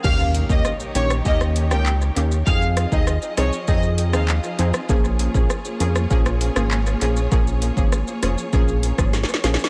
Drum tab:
CC |x-----------------------------------------------|------------------------------------------------|------------------------------------------------|------------------------------------------------|
HH |------x-----------x-----------x-----------x-----|------x-----------x-----------x-----------x-----|------x-----------x-----------x-----------x-----|------x-----------x-----------x-----------x-----|
SH |x--x--x--x--x--x--x--x--x--x--x--x--x--x--x--x--|x--x--x--x--x--x--x--x--x--x--x--x--x--x--x--x--|x--x--x--x--x--x--x--x--x--x--x--x--x--x--x--x--|x--x--x--x--x--x--x--x--x--x--x--x--x--x--x--x--|
CP |------------------------------------x-----------|------------------------------------x-----------|------------------------------------x-----------|------------------------------------------------|
SD |------------r--------r-----r-----r--------------|------r-----r-----r--------------r-----------r--|------------r--------r-----r-----r--------------|------------r-----r--------------r--o-o-o-o-o-o-|
BD |o--------o--------------o-----------------------|o--------o--------------o-----------------------|o--------o--------------o-----------------------|o--------o--------------o--------o--------------|